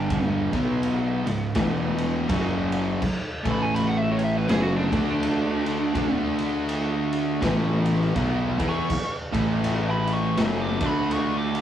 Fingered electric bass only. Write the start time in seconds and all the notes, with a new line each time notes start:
Already playing: G1
0.53 B1
1.25 C#1
1.56 E1
2.29 F#1
3.45 A1
4.48 F#1
4.92 D2
5.95 D2
7.42 A1
8.15 B1
8.59 E2
9.33 A1
10.38 F#1
10.81 D2